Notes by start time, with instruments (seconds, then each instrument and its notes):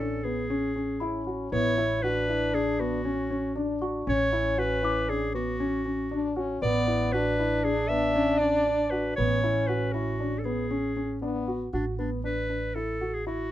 Already playing: upright bass A1, french horn C#4
0.00 grand piano D4, clarinet A4
0.23 grand piano B3, clarinet G#4
0.50 grand piano C#4
0.76 grand piano C#4
1.00 french horn C#4, grand piano E4, celesta B5
1.27 grand piano F#4
1.52 upright bass A1, grand piano B3, french horn E4, clarinet C#5
1.78 grand piano E4
2.02 french horn D4, grand piano F#4, clarinet B4
2.29 grand piano E4
2.54 grand piano D4, clarinet G#4
2.79 grand piano B3, clarinet F#4
3.05 french horn C#4, grand piano C#4
3.31 grand piano C#4
3.56 grand piano D4, french horn D4
3.81 grand piano F#4, celesta C#6
4.07 upright bass A1, grand piano C#4, french horn C#4, clarinet C#5
4.33 grand piano E4
4.58 grand piano F#4, clarinet B4
4.83 grand piano E4, celesta D6
5.09 grand piano D4, clarinet G#4
5.34 grand piano B3, clarinet F#4
5.60 grand piano C#4
5.85 grand piano C#4
6.11 grand piano D4, french horn D4
6.36 french horn C#4, grand piano F#4
6.62 upright bass A1, grand piano B3, french horn B3, clarinet D5
6.88 grand piano E4
7.12 french horn D4, grand piano F#4, clarinet B4
7.40 grand piano E4
7.64 grand piano D4, clarinet G#4
7.88 grand piano B3, clarinet E5
8.15 grand piano C#4
8.39 grand piano C#4, clarinet D5
8.66 grand piano D4
8.90 grand piano F#4, clarinet B4
9.16 upright bass A1, grand piano B3, french horn C#4, clarinet C#5
9.44 grand piano E4
9.67 grand piano F#4, clarinet B4
9.93 grand piano E4, clarinet F#4
10.20 grand piano D4
10.39 clarinet A4
10.44 grand piano B3, clarinet G#4
10.71 grand piano C#4
10.97 grand piano C#4
11.22 french horn B3, grand piano D4
11.48 grand piano F#4
11.73 upright bass A1, clarinet D4, grand piano F#4
11.99 grand piano B3, clarinet D4
12.24 grand piano D4, clarinet B4
12.50 grand piano D4
12.75 grand piano E4, clarinet A4
13.01 grand piano F#4
13.14 clarinet G#4
13.27 grand piano E4, clarinet F#4